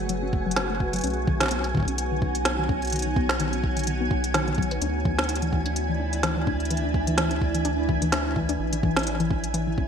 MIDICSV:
0, 0, Header, 1, 6, 480
1, 0, Start_track
1, 0, Tempo, 472441
1, 1054, Time_signature, 4, 2, 24, 8
1, 10036, End_track
2, 0, Start_track
2, 0, Title_t, "Synth texture"
2, 0, Program_c, 0, 99
2, 0, Note_on_c, 0, 80, 85
2, 10036, Note_off_c, 0, 80, 0
2, 10036, End_track
3, 0, Start_track
3, 0, Title_t, "Ambient pad"
3, 0, Program_c, 1, 92
3, 0, Note_on_c, 1, 57, 83
3, 0, Note_on_c, 1, 66, 74
3, 0, Note_on_c, 1, 68, 74
3, 0, Note_on_c, 1, 71, 72
3, 0, Note_on_c, 1, 78, 84
3, 1014, Note_off_c, 1, 57, 0
3, 1014, Note_off_c, 1, 68, 0
3, 1015, Note_off_c, 1, 78, 0
3, 1034, Note_off_c, 1, 71, 0
3, 1050, Note_on_c, 1, 59, 82
3, 1050, Note_on_c, 1, 78, 83
3, 1051, Note_on_c, 1, 63, 72
3, 1051, Note_on_c, 1, 73, 72
3, 4852, Note_off_c, 1, 66, 0
3, 4854, Note_off_c, 1, 59, 0
3, 4854, Note_off_c, 1, 63, 0
3, 4854, Note_off_c, 1, 73, 0
3, 4854, Note_off_c, 1, 78, 0
3, 4890, Note_on_c, 1, 74, 74
3, 4891, Note_on_c, 1, 52, 75
3, 4891, Note_on_c, 1, 64, 70
3, 4891, Note_on_c, 1, 76, 85
3, 4892, Note_on_c, 1, 62, 77
3, 8694, Note_off_c, 1, 62, 0
3, 8694, Note_off_c, 1, 64, 0
3, 8694, Note_off_c, 1, 74, 0
3, 8731, Note_on_c, 1, 61, 75
3, 8731, Note_on_c, 1, 64, 73
3, 8731, Note_on_c, 1, 73, 75
3, 10036, Note_off_c, 1, 52, 0
3, 10036, Note_off_c, 1, 61, 0
3, 10036, Note_off_c, 1, 64, 0
3, 10036, Note_off_c, 1, 73, 0
3, 10036, Note_off_c, 1, 76, 0
3, 10036, End_track
4, 0, Start_track
4, 0, Title_t, "Synth arpeggio sound"
4, 0, Program_c, 2, 84
4, 96, Note_on_c, 2, 54, 82
4, 223, Note_off_c, 2, 54, 0
4, 230, Note_on_c, 2, 61, 75
4, 303, Note_off_c, 2, 61, 0
4, 469, Note_on_c, 2, 54, 72
4, 543, Note_off_c, 2, 54, 0
4, 576, Note_on_c, 2, 54, 83
4, 669, Note_off_c, 2, 54, 0
4, 709, Note_on_c, 2, 57, 74
4, 783, Note_off_c, 2, 57, 0
4, 949, Note_on_c, 2, 54, 76
4, 1049, Note_off_c, 2, 54, 0
4, 1055, Note_on_c, 2, 61, 76
4, 1149, Note_off_c, 2, 61, 0
4, 1295, Note_on_c, 2, 51, 77
4, 1388, Note_off_c, 2, 51, 0
4, 1428, Note_on_c, 2, 51, 76
4, 1502, Note_off_c, 2, 51, 0
4, 1534, Note_on_c, 2, 59, 86
4, 1628, Note_off_c, 2, 59, 0
4, 1775, Note_on_c, 2, 51, 73
4, 1902, Note_off_c, 2, 51, 0
4, 1910, Note_on_c, 2, 61, 75
4, 1983, Note_off_c, 2, 61, 0
4, 2151, Note_on_c, 2, 51, 76
4, 2224, Note_off_c, 2, 51, 0
4, 2257, Note_on_c, 2, 51, 70
4, 2349, Note_off_c, 2, 51, 0
4, 2390, Note_on_c, 2, 59, 77
4, 2463, Note_off_c, 2, 59, 0
4, 2630, Note_on_c, 2, 51, 76
4, 2729, Note_off_c, 2, 51, 0
4, 2734, Note_on_c, 2, 61, 74
4, 2828, Note_off_c, 2, 61, 0
4, 2974, Note_on_c, 2, 51, 83
4, 3068, Note_off_c, 2, 51, 0
4, 3108, Note_on_c, 2, 51, 71
4, 3182, Note_off_c, 2, 51, 0
4, 3215, Note_on_c, 2, 59, 78
4, 3309, Note_off_c, 2, 59, 0
4, 3454, Note_on_c, 2, 51, 86
4, 3582, Note_off_c, 2, 51, 0
4, 3589, Note_on_c, 2, 61, 78
4, 3662, Note_off_c, 2, 61, 0
4, 3829, Note_on_c, 2, 51, 74
4, 3903, Note_off_c, 2, 51, 0
4, 3935, Note_on_c, 2, 51, 85
4, 4029, Note_off_c, 2, 51, 0
4, 4071, Note_on_c, 2, 59, 74
4, 4143, Note_off_c, 2, 59, 0
4, 4310, Note_on_c, 2, 66, 72
4, 4383, Note_off_c, 2, 66, 0
4, 4417, Note_on_c, 2, 51, 81
4, 4510, Note_off_c, 2, 51, 0
4, 4550, Note_on_c, 2, 51, 102
4, 4649, Note_off_c, 2, 51, 0
4, 4656, Note_on_c, 2, 54, 81
4, 4749, Note_off_c, 2, 54, 0
4, 4791, Note_on_c, 2, 71, 75
4, 4890, Note_off_c, 2, 71, 0
4, 4897, Note_on_c, 2, 62, 81
4, 4990, Note_off_c, 2, 62, 0
4, 5136, Note_on_c, 2, 52, 75
4, 5262, Note_off_c, 2, 52, 0
4, 5270, Note_on_c, 2, 62, 76
4, 5369, Note_off_c, 2, 62, 0
4, 5509, Note_on_c, 2, 52, 82
4, 5583, Note_off_c, 2, 52, 0
4, 5615, Note_on_c, 2, 52, 74
4, 5709, Note_off_c, 2, 52, 0
4, 5748, Note_on_c, 2, 62, 73
4, 5822, Note_off_c, 2, 62, 0
4, 5989, Note_on_c, 2, 52, 76
4, 6089, Note_off_c, 2, 52, 0
4, 6093, Note_on_c, 2, 62, 73
4, 6221, Note_off_c, 2, 62, 0
4, 6332, Note_on_c, 2, 52, 82
4, 6427, Note_off_c, 2, 52, 0
4, 6467, Note_on_c, 2, 52, 71
4, 6542, Note_off_c, 2, 52, 0
4, 6573, Note_on_c, 2, 62, 76
4, 6668, Note_off_c, 2, 62, 0
4, 6813, Note_on_c, 2, 52, 81
4, 6941, Note_off_c, 2, 52, 0
4, 6947, Note_on_c, 2, 62, 72
4, 7048, Note_off_c, 2, 62, 0
4, 7187, Note_on_c, 2, 52, 73
4, 7262, Note_off_c, 2, 52, 0
4, 7291, Note_on_c, 2, 52, 83
4, 7387, Note_off_c, 2, 52, 0
4, 7425, Note_on_c, 2, 62, 77
4, 7501, Note_off_c, 2, 62, 0
4, 7666, Note_on_c, 2, 52, 76
4, 7768, Note_off_c, 2, 52, 0
4, 7773, Note_on_c, 2, 62, 85
4, 7901, Note_off_c, 2, 62, 0
4, 8012, Note_on_c, 2, 52, 73
4, 8107, Note_off_c, 2, 52, 0
4, 8147, Note_on_c, 2, 52, 75
4, 8222, Note_off_c, 2, 52, 0
4, 8253, Note_on_c, 2, 62, 81
4, 8348, Note_off_c, 2, 62, 0
4, 8493, Note_on_c, 2, 52, 78
4, 8621, Note_off_c, 2, 52, 0
4, 8628, Note_on_c, 2, 62, 77
4, 8728, Note_off_c, 2, 62, 0
4, 8867, Note_on_c, 2, 52, 71
4, 8942, Note_off_c, 2, 52, 0
4, 8972, Note_on_c, 2, 52, 78
4, 9067, Note_off_c, 2, 52, 0
4, 9107, Note_on_c, 2, 61, 73
4, 9182, Note_off_c, 2, 61, 0
4, 9346, Note_on_c, 2, 52, 75
4, 9448, Note_off_c, 2, 52, 0
4, 9452, Note_on_c, 2, 61, 71
4, 9580, Note_off_c, 2, 61, 0
4, 9692, Note_on_c, 2, 52, 90
4, 9787, Note_off_c, 2, 52, 0
4, 9826, Note_on_c, 2, 52, 75
4, 9901, Note_off_c, 2, 52, 0
4, 9932, Note_on_c, 2, 61, 72
4, 10027, Note_off_c, 2, 61, 0
4, 10036, End_track
5, 0, Start_track
5, 0, Title_t, "Analog synth bass"
5, 0, Program_c, 3, 38
5, 0, Note_on_c, 3, 30, 90
5, 1032, Note_off_c, 3, 30, 0
5, 1053, Note_on_c, 3, 35, 95
5, 4872, Note_off_c, 3, 35, 0
5, 4892, Note_on_c, 3, 38, 91
5, 8712, Note_off_c, 3, 38, 0
5, 8732, Note_on_c, 3, 33, 90
5, 10036, Note_off_c, 3, 33, 0
5, 10036, End_track
6, 0, Start_track
6, 0, Title_t, "Drums"
6, 93, Note_on_c, 9, 42, 64
6, 195, Note_off_c, 9, 42, 0
6, 335, Note_on_c, 9, 36, 108
6, 436, Note_off_c, 9, 36, 0
6, 521, Note_on_c, 9, 42, 55
6, 573, Note_off_c, 9, 42, 0
6, 573, Note_on_c, 9, 38, 121
6, 573, Note_on_c, 9, 42, 67
6, 675, Note_off_c, 9, 38, 0
6, 675, Note_off_c, 9, 42, 0
6, 815, Note_on_c, 9, 36, 99
6, 916, Note_off_c, 9, 36, 0
6, 948, Note_on_c, 9, 42, 52
6, 975, Note_off_c, 9, 42, 0
6, 975, Note_on_c, 9, 42, 40
6, 1001, Note_off_c, 9, 42, 0
6, 1001, Note_on_c, 9, 42, 34
6, 1027, Note_off_c, 9, 42, 0
6, 1027, Note_on_c, 9, 42, 28
6, 1053, Note_off_c, 9, 42, 0
6, 1053, Note_on_c, 9, 42, 66
6, 1120, Note_off_c, 9, 42, 0
6, 1120, Note_on_c, 9, 42, 16
6, 1154, Note_off_c, 9, 42, 0
6, 1154, Note_on_c, 9, 42, 13
6, 1255, Note_off_c, 9, 42, 0
6, 1295, Note_on_c, 9, 36, 118
6, 1396, Note_off_c, 9, 36, 0
6, 1427, Note_on_c, 9, 38, 113
6, 1427, Note_on_c, 9, 42, 49
6, 1454, Note_off_c, 9, 38, 0
6, 1454, Note_on_c, 9, 38, 96
6, 1480, Note_off_c, 9, 38, 0
6, 1480, Note_on_c, 9, 38, 71
6, 1507, Note_off_c, 9, 38, 0
6, 1507, Note_on_c, 9, 38, 60
6, 1529, Note_off_c, 9, 42, 0
6, 1533, Note_on_c, 9, 42, 65
6, 1609, Note_off_c, 9, 38, 0
6, 1634, Note_off_c, 9, 42, 0
6, 1668, Note_on_c, 9, 42, 36
6, 1769, Note_off_c, 9, 42, 0
6, 1774, Note_on_c, 9, 36, 104
6, 1801, Note_off_c, 9, 36, 0
6, 1801, Note_on_c, 9, 36, 86
6, 1828, Note_off_c, 9, 36, 0
6, 1828, Note_on_c, 9, 36, 72
6, 1855, Note_off_c, 9, 36, 0
6, 1855, Note_on_c, 9, 36, 61
6, 1882, Note_off_c, 9, 36, 0
6, 1882, Note_on_c, 9, 36, 49
6, 1908, Note_on_c, 9, 42, 50
6, 1983, Note_off_c, 9, 36, 0
6, 2009, Note_off_c, 9, 42, 0
6, 2014, Note_on_c, 9, 42, 68
6, 2115, Note_off_c, 9, 42, 0
6, 2254, Note_on_c, 9, 36, 103
6, 2356, Note_off_c, 9, 36, 0
6, 2387, Note_on_c, 9, 42, 53
6, 2489, Note_off_c, 9, 42, 0
6, 2491, Note_on_c, 9, 38, 116
6, 2491, Note_on_c, 9, 42, 62
6, 2593, Note_off_c, 9, 38, 0
6, 2593, Note_off_c, 9, 42, 0
6, 2734, Note_on_c, 9, 36, 120
6, 2836, Note_off_c, 9, 36, 0
6, 2867, Note_on_c, 9, 42, 24
6, 2893, Note_off_c, 9, 42, 0
6, 2893, Note_on_c, 9, 42, 27
6, 2919, Note_off_c, 9, 42, 0
6, 2919, Note_on_c, 9, 42, 28
6, 2945, Note_off_c, 9, 42, 0
6, 2945, Note_on_c, 9, 42, 33
6, 2972, Note_off_c, 9, 42, 0
6, 2972, Note_on_c, 9, 42, 65
6, 3005, Note_off_c, 9, 42, 0
6, 3005, Note_on_c, 9, 42, 40
6, 3039, Note_off_c, 9, 42, 0
6, 3039, Note_on_c, 9, 42, 45
6, 3071, Note_off_c, 9, 42, 0
6, 3071, Note_on_c, 9, 42, 48
6, 3173, Note_off_c, 9, 42, 0
6, 3214, Note_on_c, 9, 36, 123
6, 3316, Note_off_c, 9, 36, 0
6, 3346, Note_on_c, 9, 38, 114
6, 3447, Note_off_c, 9, 38, 0
6, 3451, Note_on_c, 9, 42, 60
6, 3553, Note_off_c, 9, 42, 0
6, 3586, Note_on_c, 9, 42, 33
6, 3687, Note_off_c, 9, 42, 0
6, 3694, Note_on_c, 9, 36, 97
6, 3796, Note_off_c, 9, 36, 0
6, 3827, Note_on_c, 9, 42, 47
6, 3852, Note_off_c, 9, 42, 0
6, 3852, Note_on_c, 9, 42, 38
6, 3896, Note_off_c, 9, 42, 0
6, 3896, Note_on_c, 9, 42, 32
6, 3932, Note_off_c, 9, 42, 0
6, 3932, Note_on_c, 9, 42, 65
6, 4034, Note_off_c, 9, 42, 0
6, 4174, Note_on_c, 9, 36, 106
6, 4276, Note_off_c, 9, 36, 0
6, 4307, Note_on_c, 9, 42, 53
6, 4408, Note_off_c, 9, 42, 0
6, 4413, Note_on_c, 9, 38, 118
6, 4413, Note_on_c, 9, 42, 59
6, 4515, Note_off_c, 9, 38, 0
6, 4515, Note_off_c, 9, 42, 0
6, 4548, Note_on_c, 9, 42, 16
6, 4619, Note_off_c, 9, 42, 0
6, 4619, Note_on_c, 9, 42, 20
6, 4654, Note_on_c, 9, 36, 111
6, 4699, Note_off_c, 9, 42, 0
6, 4699, Note_on_c, 9, 42, 27
6, 4755, Note_off_c, 9, 36, 0
6, 4788, Note_off_c, 9, 42, 0
6, 4788, Note_on_c, 9, 42, 47
6, 4890, Note_off_c, 9, 42, 0
6, 4893, Note_on_c, 9, 42, 64
6, 4995, Note_off_c, 9, 42, 0
6, 5134, Note_on_c, 9, 36, 119
6, 5236, Note_off_c, 9, 36, 0
6, 5269, Note_on_c, 9, 38, 113
6, 5269, Note_on_c, 9, 42, 21
6, 5321, Note_off_c, 9, 42, 0
6, 5321, Note_on_c, 9, 42, 27
6, 5370, Note_off_c, 9, 38, 0
6, 5374, Note_off_c, 9, 42, 0
6, 5374, Note_on_c, 9, 42, 63
6, 5440, Note_off_c, 9, 42, 0
6, 5440, Note_on_c, 9, 42, 41
6, 5508, Note_off_c, 9, 42, 0
6, 5508, Note_on_c, 9, 42, 32
6, 5610, Note_off_c, 9, 42, 0
6, 5614, Note_on_c, 9, 36, 92
6, 5716, Note_off_c, 9, 36, 0
6, 5747, Note_on_c, 9, 42, 46
6, 5849, Note_off_c, 9, 42, 0
6, 5853, Note_on_c, 9, 42, 60
6, 5955, Note_off_c, 9, 42, 0
6, 6227, Note_on_c, 9, 42, 48
6, 6328, Note_off_c, 9, 42, 0
6, 6332, Note_on_c, 9, 38, 111
6, 6332, Note_on_c, 9, 42, 60
6, 6434, Note_off_c, 9, 38, 0
6, 6434, Note_off_c, 9, 42, 0
6, 6574, Note_on_c, 9, 36, 120
6, 6676, Note_off_c, 9, 36, 0
6, 6707, Note_on_c, 9, 42, 22
6, 6759, Note_off_c, 9, 42, 0
6, 6759, Note_on_c, 9, 42, 29
6, 6812, Note_off_c, 9, 42, 0
6, 6812, Note_on_c, 9, 42, 64
6, 6879, Note_off_c, 9, 42, 0
6, 6879, Note_on_c, 9, 42, 39
6, 6981, Note_off_c, 9, 42, 0
6, 7054, Note_on_c, 9, 36, 103
6, 7155, Note_off_c, 9, 36, 0
6, 7186, Note_on_c, 9, 42, 48
6, 7288, Note_off_c, 9, 42, 0
6, 7292, Note_on_c, 9, 38, 109
6, 7292, Note_on_c, 9, 42, 62
6, 7393, Note_off_c, 9, 38, 0
6, 7393, Note_off_c, 9, 42, 0
6, 7425, Note_on_c, 9, 42, 31
6, 7527, Note_off_c, 9, 42, 0
6, 7534, Note_on_c, 9, 36, 103
6, 7636, Note_off_c, 9, 36, 0
6, 7666, Note_on_c, 9, 42, 48
6, 7768, Note_off_c, 9, 42, 0
6, 7771, Note_on_c, 9, 42, 58
6, 7873, Note_off_c, 9, 42, 0
6, 8014, Note_on_c, 9, 36, 107
6, 8116, Note_off_c, 9, 36, 0
6, 8147, Note_on_c, 9, 42, 51
6, 8249, Note_off_c, 9, 42, 0
6, 8253, Note_on_c, 9, 38, 109
6, 8253, Note_on_c, 9, 42, 58
6, 8355, Note_off_c, 9, 38, 0
6, 8355, Note_off_c, 9, 42, 0
6, 8494, Note_on_c, 9, 36, 96
6, 8595, Note_off_c, 9, 36, 0
6, 8627, Note_on_c, 9, 42, 48
6, 8728, Note_off_c, 9, 42, 0
6, 8866, Note_on_c, 9, 42, 64
6, 8968, Note_off_c, 9, 42, 0
6, 8974, Note_on_c, 9, 36, 110
6, 9076, Note_off_c, 9, 36, 0
6, 9108, Note_on_c, 9, 38, 112
6, 9108, Note_on_c, 9, 42, 23
6, 9133, Note_off_c, 9, 42, 0
6, 9133, Note_on_c, 9, 42, 30
6, 9178, Note_off_c, 9, 42, 0
6, 9178, Note_on_c, 9, 42, 38
6, 9210, Note_off_c, 9, 38, 0
6, 9213, Note_off_c, 9, 42, 0
6, 9213, Note_on_c, 9, 42, 62
6, 9314, Note_off_c, 9, 42, 0
6, 9348, Note_on_c, 9, 42, 33
6, 9449, Note_off_c, 9, 42, 0
6, 9454, Note_on_c, 9, 36, 101
6, 9555, Note_off_c, 9, 36, 0
6, 9588, Note_on_c, 9, 42, 51
6, 9689, Note_off_c, 9, 42, 0
6, 9693, Note_on_c, 9, 42, 60
6, 9795, Note_off_c, 9, 42, 0
6, 9934, Note_on_c, 9, 36, 90
6, 10035, Note_off_c, 9, 36, 0
6, 10036, End_track
0, 0, End_of_file